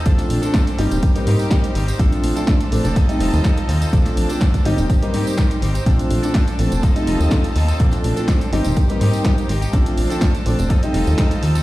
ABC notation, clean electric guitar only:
X:1
M:4/4
L:1/16
Q:"Swing 16ths" 1/4=124
K:Bb
V:1 name="Clean electric guitar"
[F,CDA]3 [CDA] [F,CDA] [CDA] [G,CEG]3 [CEG] [G,CEG]2 [G,CEG]2 [G,CEG] [CEG] | [F,CDA]3 [CDA] [F,CDA] [CDA]2 [CDA] [F,CEA] [CEA] [F,CEA]2 [F,CEA]2 [F,CEA] [CEA] | [F,CDA]3 [CDA] [F,CDA] [CDA] [G,CEG]3 [CEG] [G,CEG]2 [G,CEG]2 [G,CEG] [CEG] | [F,CDA]3 [CDA] [F,CDA] [CDA]3 [F,CEA] [CEA] [F,CEA]2 [F,CEA]2 [F,CEA] [CEA] |
[F,CDA]3 [CDA] [F,CDA] [CDA] [CEG]3 [EG] [CEG]2 [CEG]2 [CEG] [EG] | [F,CDA]3 [CDA] [F,CDA] [CDA]3 [F,CEA] [CEA] [F,CEA]2 [F,CEA]2 [F,CEA] [CEA] |]